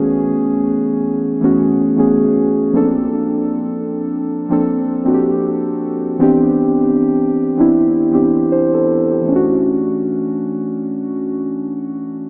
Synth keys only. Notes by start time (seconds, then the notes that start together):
Already playing: E3 A3 B3 C#4 F#4 G#4
1.41 E3 A3 B3 C#4 F#4
1.96 E3 A3 B3 C#4 G#4
2.73 F3 A#3 C4 D4 A4
4.49 F3 A#3 C4 D4 A4
5.04 F3 A#3 C4 D4 F#4
5.14 G4
6.19 E3 B3 C4 D4 G4
7.57 E3 B3 C4 D4 E4
8.11 E3 B3 C4 D4 G4
8.52 C5
8.74 A4
9.12 G4
9.21 E3 A3
9.28 C#4 D4
9.36 F#4